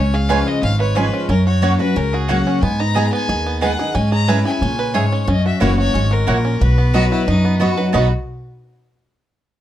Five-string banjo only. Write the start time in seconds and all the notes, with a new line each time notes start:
Already playing: C#4
0.14 G#4
0.30 B4
0.47 G#4
0.63 C#4
0.80 B4
0.97 G#4
1.14 C#4
1.30 C#4
1.47 F#4
1.63 F#4
1.80 F#4
1.97 C#4
2.14 F#4
2.30 F#4
2.47 C#4
2.63 B3
2.80 D#4
2.96 G#4
3.13 B3
3.29 G#4
3.46 B3
3.62 B4
3.79 G#4
3.95 C#4
4.12 G#4
4.28 B4
4.45 G#4
4.62 C#4
4.79 B4
4.95 G#4
5.12 C#4
5.28 C#4
5.46 F#4
5.61 F#4
5.78 F#4
5.94 C#4
6.11 F#4
6.27 F#4
6.45 C#4
6.61 F#4
6.78 B3
6.94 D#4
7.12 F#4
7.28 D#4
7.45 B3
7.61 F#4
7.77 B4
7.94 B3 D#4
7.98 F#4